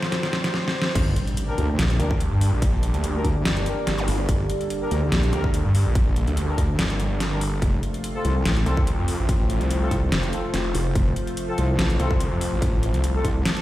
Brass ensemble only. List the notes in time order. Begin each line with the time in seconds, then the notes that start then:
1.48 D4 G4 A#4
2.00 D4 G4 A#4
3.15 D4 G4 A#4
3.66 D4 G4 A#4
4.82 D4 G4 A#4
5.33 D4 G4 A#4
6.48 D4 G4 A#4
7.31 D4 G4 A#4
8.15 C4 F4 A4
8.66 C4 F4 A4
9.82 C4 F4 A4
10.33 C4 F4 A4
11.48 C4 F4 A4
11.99 C4 F4 A4
13.15 C4 F4 A4